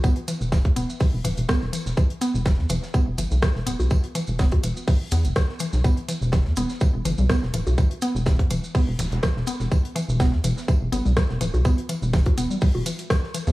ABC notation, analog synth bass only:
X:1
M:4/4
L:1/16
Q:"Swing 16ths" 1/4=124
K:Em
V:1 name="Analog synth bass" clef=bass
z3 E,,,2 E,, E,,, z2 E,,, D,,, E,,, z E,,, z E,,, | z3 E,,,2 E,, E,,, z2 E,,, G,,, B,,, z E,,, D,,, B,,, | z3 E,,,2 E,, E,,, z3 E,, E,,, z3 B,,, | z3 E,,,2 E,, E,,, z2 E,,, G,,, B,,, z E,,, D,,, B,,, |
z3 E,,,2 E,, E,,, z2 E,,, D,,, E,,, z E,,, z E,,, | z3 E,,,2 E,, E,,, z2 E,,, G,,, B,,, z E,,, D,,, B,,, | z3 E,,,2 E,, E,,, z2 E,,, z4 z E,, |]